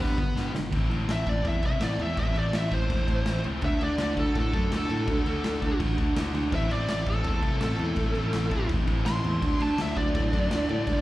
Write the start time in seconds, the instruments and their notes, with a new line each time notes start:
0.00 picked electric bass G1, overdriven electric guitar G2 D3 G3, lead electric guitar B3 B4
0.18 picked electric bass G1, overdriven electric guitar G2 D3, kick
0.35 picked electric bass G1, overdriven electric guitar G2 D3 G3, snare
0.54 picked electric bass G1, overdriven electric guitar G2 D3, snare
0.73 picked electric bass A1, overdriven electric guitar A2 E3 A3 C4 E4, kick, crash
0.89 picked electric bass A1, overdriven electric guitar A2 E3 A3, crash
0.93 overdriven electric guitar C4 E4
1.07 picked electric bass A1, overdriven electric guitar A2 E3 A3 C4 E4, lead electric guitar E5, snare, crash
1.27 picked electric bass A1, overdriven electric guitar A2 E3 A3 C4 E4, lead electric guitar D5, kick, crash
1.44 picked electric bass E2, overdriven electric guitar A2 E3 A3 C4 E4, kick, crash
1.48 lead electric guitar E5
1.63 picked electric bass C2, overdriven electric guitar A2 E3 A3 C4 E4, lead electric guitar E5, kick, crash
1.80 picked electric bass A1, overdriven electric guitar A2 E3 A3 C4 E4, snare, crash
1.84 lead electric guitar D5
1.99 picked electric bass E2, overdriven electric guitar A2 E3 A3 C4 E4, lead electric guitar E5, crash
2.17 picked electric bass A1, overdriven electric guitar A2 E3 A3 C4 E4, lead electric guitar E5, kick, crash
2.35 picked electric bass A1, overdriven electric guitar A2 E3 A3 C4 E4, lead electric guitar D5, crash
2.53 picked electric bass A1, overdriven electric guitar A2 E3 A3 C4 E4, lead electric guitar E5, snare, crash
2.71 picked electric bass A1, overdriven electric guitar A2 E3 A3 C4 E4, lead electric guitar C5, kick, crash
2.90 picked electric bass E1, overdriven electric guitar A2 E3 A3 C4 E4, kick, crash
3.08 picked electric bass A1, overdriven electric guitar A2 E3 A3 C4 E4, kick, crash
3.26 picked electric bass A1, overdriven electric guitar A2 E3 A3 C4 E4, snare, crash
3.44 picked electric bass C#2, overdriven electric guitar A2 E3 A3 C4 E4, crash
3.61 picked electric bass D2, overdriven electric guitar D3 A3 D4 F#4, lead electric guitar E5, kick, crash
3.80 picked electric bass D2, overdriven electric guitar D3 A3 D4 F#4, lead electric guitar D5, crash
3.98 picked electric bass D2, overdriven electric guitar D3 A3 D4 F#4, snare, crash
4.02 lead electric guitar D5
4.15 picked electric bass D2, overdriven electric guitar D3 A3 D4 F#4, kick, crash
4.20 lead electric guitar A4
4.33 picked electric bass A2, overdriven electric guitar D3 A3 D4 F#4, kick, crash
4.39 lead electric guitar A4
4.52 picked electric bass F#2, overdriven electric guitar D3 A3 D4 F#4, kick, crash
4.71 picked electric bass D2, overdriven electric guitar D3 A3 D4 F#4, snare, crash
4.76 lead electric guitar A4
4.88 picked electric bass A2, overdriven electric guitar D3 A3 D4 F#4, crash
5.06 picked electric bass D2, overdriven electric guitar D3 A3 D4 F#4, kick, crash
5.24 picked electric bass D2, overdriven electric guitar D3 A3 D4 F#4, crash
5.43 picked electric bass D2, overdriven electric guitar D3 A3 D4 F#4, snare, crash
5.60 picked electric bass D2, overdriven electric guitar D3 A3 D4 F#4, kick, crash
5.78 picked electric bass A1, overdriven electric guitar D3 A3 D4 F#4, kick, crash
5.97 picked electric bass D2, overdriven electric guitar D3 A3 D4 F#4, kick, crash
6.14 picked electric bass D2, overdriven electric guitar D3 A3 D4 F#4, snare, crash
6.33 picked electric bass D2, overdriven electric guitar D3 A3 D4 F#4, crash
6.51 picked electric bass A1, overdriven electric guitar A2 E3 A3 C4 E4, lead electric guitar E5, kick, crash
6.69 picked electric bass A1, overdriven electric guitar A2 E3 A3 C4 E4, lead electric guitar D5, crash
6.88 picked electric bass A1, overdriven electric guitar A2 E3 A3 C4 E4, lead electric guitar D5, snare, crash
7.06 picked electric bass A1, overdriven electric guitar A2 E3 A3 C4 E4, lead electric guitar A4, kick, crash
7.23 picked electric bass E2, overdriven electric guitar A2 E3 A3 C4 E4, kick, crash
7.27 lead electric guitar A4
7.41 picked electric bass C2, overdriven electric guitar A2 E3 A3 C4 E4, kick, crash
7.60 picked electric bass A1, overdriven electric guitar A2 E3 A3 C4 E4, lead electric guitar A4, snare, crash
7.78 picked electric bass E2, overdriven electric guitar A2 E3 A3 C4 E4, crash
7.94 picked electric bass A1, overdriven electric guitar A2 E3 A3 C4 E4, kick, crash
8.13 picked electric bass A1, overdriven electric guitar A2 E3 A3 C4 E4, crash
8.30 picked electric bass A1, overdriven electric guitar A2 E3 A3 C4 E4, snare, crash
8.49 picked electric bass A1, overdriven electric guitar A2 E3 A3 C4 E4, kick, crash
8.68 picked electric bass E1, overdriven electric guitar A2 E3 A3 C4 E4, kick, crash
8.85 picked electric bass A1, overdriven electric guitar A2 E3 A3 C4 E4, kick, crash
8.90 distorted electric guitar A2
9.05 picked electric bass A1, overdriven electric guitar A2 E3 A3 C4 E4, lead electric guitar C6, snare, crash
9.22 picked electric bass E2, overdriven electric guitar A2 E3 A3 C4 E4, crash
9.40 picked electric bass D2, overdriven electric guitar D3 F#3 A3 D4, kick, crash
9.59 picked electric bass D2, overdriven electric guitar D3 F#3 A3 D4, lead electric guitar A5, crash
9.77 picked electric bass D2, overdriven electric guitar D3 F#3 A3 D4, snare, crash
9.81 lead electric guitar E5
9.95 picked electric bass D2, overdriven electric guitar D3 F#3 A3 D4, lead electric guitar D5, kick, crash
10.14 picked electric bass A2, overdriven electric guitar D3 F#3 A3 D4, kick, crash
10.32 picked electric bass F#2, overdriven electric guitar D3 F#3 A3 D4, kick, crash
10.49 picked electric bass D2, overdriven electric guitar D3 F#3 A3 D4, snare, crash
10.68 picked electric bass A2, overdriven electric guitar D3 F#3 A3 D4, crash
10.86 picked electric bass G1, overdriven electric guitar G2 D3 F3 B3 D4, distorted electric guitar G3, kick, crash